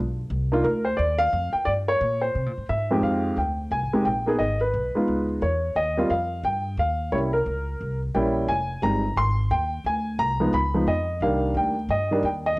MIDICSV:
0, 0, Header, 1, 4, 480
1, 0, Start_track
1, 0, Key_signature, -3, "minor"
1, 0, Tempo, 341103
1, 431, Time_signature, 4, 2, 24, 8
1, 17721, End_track
2, 0, Start_track
2, 0, Title_t, "Grand piano"
2, 0, Program_c, 0, 0
2, 731, Note_on_c, 0, 62, 65
2, 732, Note_on_c, 0, 58, 81
2, 737, Note_on_c, 0, 63, 69
2, 751, Note_on_c, 0, 65, 85
2, 893, Note_off_c, 0, 62, 0
2, 894, Note_off_c, 0, 58, 0
2, 896, Note_off_c, 0, 63, 0
2, 901, Note_on_c, 0, 70, 82
2, 903, Note_off_c, 0, 65, 0
2, 1183, Note_off_c, 0, 70, 0
2, 1191, Note_on_c, 0, 72, 75
2, 1362, Note_on_c, 0, 74, 87
2, 1387, Note_off_c, 0, 72, 0
2, 1668, Note_on_c, 0, 77, 114
2, 1685, Note_off_c, 0, 74, 0
2, 2124, Note_off_c, 0, 77, 0
2, 2149, Note_on_c, 0, 79, 88
2, 2326, Note_on_c, 0, 74, 95
2, 2346, Note_off_c, 0, 79, 0
2, 2397, Note_off_c, 0, 74, 0
2, 2651, Note_on_c, 0, 73, 98
2, 3097, Note_off_c, 0, 73, 0
2, 3117, Note_on_c, 0, 72, 73
2, 3737, Note_off_c, 0, 72, 0
2, 3790, Note_on_c, 0, 76, 80
2, 4091, Note_on_c, 0, 41, 69
2, 4098, Note_on_c, 0, 56, 60
2, 4101, Note_on_c, 0, 60, 62
2, 4116, Note_on_c, 0, 63, 59
2, 4117, Note_on_c, 0, 67, 77
2, 4236, Note_off_c, 0, 76, 0
2, 4268, Note_on_c, 0, 77, 82
2, 4714, Note_off_c, 0, 41, 0
2, 4718, Note_off_c, 0, 56, 0
2, 4719, Note_off_c, 0, 60, 0
2, 4727, Note_off_c, 0, 63, 0
2, 4727, Note_off_c, 0, 67, 0
2, 4755, Note_on_c, 0, 79, 74
2, 4763, Note_off_c, 0, 77, 0
2, 5199, Note_off_c, 0, 79, 0
2, 5229, Note_on_c, 0, 80, 84
2, 5534, Note_on_c, 0, 56, 70
2, 5537, Note_on_c, 0, 60, 58
2, 5543, Note_on_c, 0, 63, 59
2, 5555, Note_on_c, 0, 67, 65
2, 5675, Note_off_c, 0, 80, 0
2, 5694, Note_off_c, 0, 56, 0
2, 5695, Note_off_c, 0, 60, 0
2, 5698, Note_off_c, 0, 63, 0
2, 5699, Note_on_c, 0, 79, 82
2, 5705, Note_off_c, 0, 67, 0
2, 5998, Note_on_c, 0, 58, 69
2, 6012, Note_on_c, 0, 59, 58
2, 6014, Note_on_c, 0, 63, 62
2, 6024, Note_on_c, 0, 68, 76
2, 6166, Note_off_c, 0, 58, 0
2, 6172, Note_on_c, 0, 75, 84
2, 6173, Note_off_c, 0, 59, 0
2, 6174, Note_off_c, 0, 63, 0
2, 6179, Note_off_c, 0, 68, 0
2, 6199, Note_off_c, 0, 79, 0
2, 6458, Note_off_c, 0, 75, 0
2, 6485, Note_on_c, 0, 71, 71
2, 6968, Note_on_c, 0, 56, 63
2, 6973, Note_on_c, 0, 59, 54
2, 6984, Note_on_c, 0, 63, 55
2, 6989, Note_on_c, 0, 65, 67
2, 7390, Note_off_c, 0, 71, 0
2, 7592, Note_off_c, 0, 56, 0
2, 7595, Note_off_c, 0, 59, 0
2, 7601, Note_off_c, 0, 63, 0
2, 7603, Note_off_c, 0, 65, 0
2, 7630, Note_on_c, 0, 73, 77
2, 8108, Note_on_c, 0, 75, 88
2, 8123, Note_off_c, 0, 73, 0
2, 8407, Note_on_c, 0, 55, 70
2, 8412, Note_on_c, 0, 58, 60
2, 8419, Note_on_c, 0, 60, 62
2, 8422, Note_on_c, 0, 65, 81
2, 8570, Note_off_c, 0, 55, 0
2, 8573, Note_off_c, 0, 58, 0
2, 8576, Note_off_c, 0, 60, 0
2, 8578, Note_off_c, 0, 65, 0
2, 8588, Note_on_c, 0, 77, 86
2, 8603, Note_off_c, 0, 75, 0
2, 9034, Note_off_c, 0, 77, 0
2, 9071, Note_on_c, 0, 79, 89
2, 9560, Note_on_c, 0, 77, 85
2, 9564, Note_off_c, 0, 79, 0
2, 10001, Note_off_c, 0, 77, 0
2, 10023, Note_on_c, 0, 55, 56
2, 10023, Note_on_c, 0, 73, 82
2, 10029, Note_on_c, 0, 58, 47
2, 10037, Note_on_c, 0, 61, 53
2, 10048, Note_on_c, 0, 64, 60
2, 10093, Note_off_c, 0, 73, 0
2, 10295, Note_off_c, 0, 55, 0
2, 10298, Note_off_c, 0, 58, 0
2, 10302, Note_off_c, 0, 61, 0
2, 10307, Note_off_c, 0, 64, 0
2, 10316, Note_on_c, 0, 70, 82
2, 11226, Note_off_c, 0, 70, 0
2, 11463, Note_on_c, 0, 79, 81
2, 11465, Note_on_c, 0, 55, 68
2, 11474, Note_on_c, 0, 58, 60
2, 11481, Note_on_c, 0, 61, 60
2, 11484, Note_on_c, 0, 64, 72
2, 11940, Note_on_c, 0, 80, 94
2, 11947, Note_off_c, 0, 55, 0
2, 11951, Note_off_c, 0, 58, 0
2, 11954, Note_off_c, 0, 61, 0
2, 11956, Note_off_c, 0, 64, 0
2, 11960, Note_off_c, 0, 79, 0
2, 12390, Note_off_c, 0, 80, 0
2, 12412, Note_on_c, 0, 55, 50
2, 12420, Note_on_c, 0, 56, 42
2, 12427, Note_on_c, 0, 82, 94
2, 12429, Note_on_c, 0, 60, 42
2, 12438, Note_on_c, 0, 63, 53
2, 12690, Note_off_c, 0, 55, 0
2, 12694, Note_off_c, 0, 56, 0
2, 12698, Note_off_c, 0, 60, 0
2, 12703, Note_off_c, 0, 63, 0
2, 12909, Note_on_c, 0, 84, 98
2, 12922, Note_off_c, 0, 82, 0
2, 13382, Note_on_c, 0, 79, 92
2, 13403, Note_off_c, 0, 84, 0
2, 13832, Note_off_c, 0, 79, 0
2, 13880, Note_on_c, 0, 80, 88
2, 14321, Note_off_c, 0, 80, 0
2, 14339, Note_on_c, 0, 82, 100
2, 14634, Note_on_c, 0, 53, 64
2, 14637, Note_on_c, 0, 56, 59
2, 14643, Note_on_c, 0, 59, 67
2, 14651, Note_on_c, 0, 63, 72
2, 14804, Note_off_c, 0, 53, 0
2, 14805, Note_off_c, 0, 56, 0
2, 14808, Note_off_c, 0, 59, 0
2, 14812, Note_off_c, 0, 63, 0
2, 14830, Note_on_c, 0, 83, 94
2, 14839, Note_off_c, 0, 82, 0
2, 15117, Note_on_c, 0, 53, 63
2, 15120, Note_on_c, 0, 56, 52
2, 15132, Note_on_c, 0, 59, 52
2, 15141, Note_on_c, 0, 63, 64
2, 15285, Note_off_c, 0, 53, 0
2, 15287, Note_off_c, 0, 56, 0
2, 15293, Note_off_c, 0, 59, 0
2, 15297, Note_off_c, 0, 63, 0
2, 15306, Note_on_c, 0, 75, 84
2, 15324, Note_off_c, 0, 83, 0
2, 15754, Note_off_c, 0, 75, 0
2, 15790, Note_on_c, 0, 55, 62
2, 15792, Note_on_c, 0, 51, 66
2, 15792, Note_on_c, 0, 77, 83
2, 15798, Note_on_c, 0, 58, 61
2, 15803, Note_on_c, 0, 62, 64
2, 16280, Note_on_c, 0, 79, 85
2, 16285, Note_off_c, 0, 77, 0
2, 16509, Note_off_c, 0, 55, 0
2, 16510, Note_off_c, 0, 51, 0
2, 16513, Note_off_c, 0, 58, 0
2, 16516, Note_off_c, 0, 62, 0
2, 16753, Note_on_c, 0, 75, 89
2, 16769, Note_off_c, 0, 79, 0
2, 17042, Note_on_c, 0, 51, 69
2, 17052, Note_on_c, 0, 55, 60
2, 17060, Note_on_c, 0, 58, 62
2, 17063, Note_on_c, 0, 62, 78
2, 17198, Note_off_c, 0, 75, 0
2, 17208, Note_off_c, 0, 51, 0
2, 17213, Note_off_c, 0, 55, 0
2, 17217, Note_off_c, 0, 58, 0
2, 17218, Note_off_c, 0, 62, 0
2, 17240, Note_on_c, 0, 79, 80
2, 17310, Note_off_c, 0, 79, 0
2, 17538, Note_on_c, 0, 75, 90
2, 17721, Note_off_c, 0, 75, 0
2, 17721, End_track
3, 0, Start_track
3, 0, Title_t, "Upright bass"
3, 0, Program_c, 1, 32
3, 0, Note_on_c, 1, 35, 78
3, 410, Note_off_c, 1, 35, 0
3, 423, Note_on_c, 1, 36, 87
3, 892, Note_off_c, 1, 36, 0
3, 909, Note_on_c, 1, 38, 87
3, 1375, Note_off_c, 1, 38, 0
3, 1387, Note_on_c, 1, 39, 85
3, 1854, Note_off_c, 1, 39, 0
3, 1867, Note_on_c, 1, 41, 90
3, 2147, Note_off_c, 1, 41, 0
3, 2347, Note_on_c, 1, 43, 71
3, 2814, Note_off_c, 1, 43, 0
3, 2825, Note_on_c, 1, 46, 84
3, 3293, Note_off_c, 1, 46, 0
3, 3307, Note_on_c, 1, 48, 75
3, 3466, Note_off_c, 1, 48, 0
3, 3466, Note_on_c, 1, 46, 52
3, 3617, Note_off_c, 1, 46, 0
3, 3626, Note_on_c, 1, 44, 60
3, 3776, Note_off_c, 1, 44, 0
3, 3790, Note_on_c, 1, 44, 78
3, 4248, Note_off_c, 1, 44, 0
3, 4256, Note_on_c, 1, 41, 74
3, 4728, Note_off_c, 1, 41, 0
3, 4739, Note_on_c, 1, 38, 73
3, 5210, Note_off_c, 1, 38, 0
3, 5217, Note_on_c, 1, 36, 78
3, 5389, Note_on_c, 1, 32, 54
3, 5410, Note_off_c, 1, 36, 0
3, 5536, Note_off_c, 1, 32, 0
3, 5545, Note_on_c, 1, 29, 53
3, 5692, Note_off_c, 1, 29, 0
3, 5701, Note_on_c, 1, 34, 75
3, 6170, Note_off_c, 1, 34, 0
3, 6183, Note_on_c, 1, 32, 75
3, 6652, Note_off_c, 1, 32, 0
3, 6664, Note_on_c, 1, 35, 77
3, 6945, Note_off_c, 1, 35, 0
3, 7144, Note_on_c, 1, 37, 77
3, 7612, Note_off_c, 1, 37, 0
3, 7623, Note_on_c, 1, 40, 85
3, 8091, Note_off_c, 1, 40, 0
3, 8098, Note_on_c, 1, 39, 75
3, 8569, Note_off_c, 1, 39, 0
3, 8580, Note_on_c, 1, 41, 85
3, 9046, Note_off_c, 1, 41, 0
3, 9054, Note_on_c, 1, 43, 82
3, 9523, Note_off_c, 1, 43, 0
3, 9531, Note_on_c, 1, 39, 86
3, 10005, Note_off_c, 1, 39, 0
3, 10020, Note_on_c, 1, 36, 82
3, 10490, Note_off_c, 1, 36, 0
3, 10497, Note_on_c, 1, 37, 80
3, 10968, Note_off_c, 1, 37, 0
3, 10985, Note_on_c, 1, 36, 73
3, 11452, Note_off_c, 1, 36, 0
3, 11462, Note_on_c, 1, 34, 80
3, 11926, Note_off_c, 1, 34, 0
3, 11934, Note_on_c, 1, 29, 72
3, 12407, Note_off_c, 1, 29, 0
3, 12414, Note_on_c, 1, 31, 84
3, 12887, Note_off_c, 1, 31, 0
3, 12896, Note_on_c, 1, 32, 81
3, 13368, Note_off_c, 1, 32, 0
3, 13374, Note_on_c, 1, 39, 82
3, 13844, Note_off_c, 1, 39, 0
3, 13852, Note_on_c, 1, 38, 78
3, 14326, Note_off_c, 1, 38, 0
3, 14335, Note_on_c, 1, 36, 83
3, 14807, Note_off_c, 1, 36, 0
3, 14814, Note_on_c, 1, 37, 88
3, 15287, Note_off_c, 1, 37, 0
3, 15293, Note_on_c, 1, 41, 76
3, 15763, Note_off_c, 1, 41, 0
3, 15771, Note_on_c, 1, 36, 77
3, 16236, Note_off_c, 1, 36, 0
3, 16244, Note_on_c, 1, 38, 82
3, 16722, Note_off_c, 1, 38, 0
3, 16728, Note_on_c, 1, 43, 82
3, 17198, Note_off_c, 1, 43, 0
3, 17206, Note_on_c, 1, 39, 81
3, 17679, Note_off_c, 1, 39, 0
3, 17721, End_track
4, 0, Start_track
4, 0, Title_t, "Muted upright bass strokes"
4, 2167, Note_on_c, 9, 29, 36
4, 2308, Note_off_c, 9, 29, 0
4, 6966, Note_on_c, 9, 29, 34
4, 7107, Note_off_c, 9, 29, 0
4, 17721, End_track
0, 0, End_of_file